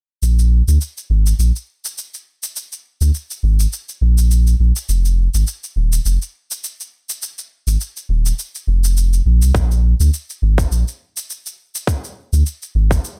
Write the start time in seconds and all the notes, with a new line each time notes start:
0.22 A#1, shaker
0.39 shaker
0.68 D2, shaker
0.81 shaker
0.98 shaker
1.10 G#1
1.27 shaker
1.39 A#1, shaker
1.56 shaker
1.85 shaker
1.98 shaker
2.14 shaker
2.43 shaker
2.56 shaker
2.72 shaker
3.01 D2, shaker
3.14 shaker
3.31 shaker
3.43 G#1
3.60 shaker
3.73 shaker
3.89 shaker
4.01 A#1
4.18 shaker
4.31 shaker
4.47 shaker
4.60 A#1
4.76 shaker
4.89 F1, shaker
5.05 shaker
5.34 G#1, shaker
5.47 shaker
5.64 shaker
5.76 D#1
5.93 shaker
6.05 F1, shaker
6.22 shaker
6.51 shaker
6.64 shaker
6.80 shaker
7.09 shaker
7.22 shaker
7.39 shaker
7.67 G#1, shaker
7.81 shaker
7.97 shaker
8.09 D#1
8.26 shaker
8.39 shaker
8.55 shaker
8.67 F1
8.84 shaker
8.97 shaker
9.13 shaker
9.26 A#1
9.42 C2, shaker
9.55 A#1, kick, shaker
9.71 shaker
10.00 D2, shaker
10.14 shaker
10.30 shaker
10.42 G#1
10.58 kick, shaker
10.71 A#1, shaker
10.88 shaker
11.17 shaker
11.30 shaker
11.46 shaker
11.75 shaker
11.87 kick, shaker
12.04 shaker
12.33 D2, shaker
12.46 shaker
12.62 shaker
12.75 G#1
12.91 kick, shaker
13.04 shaker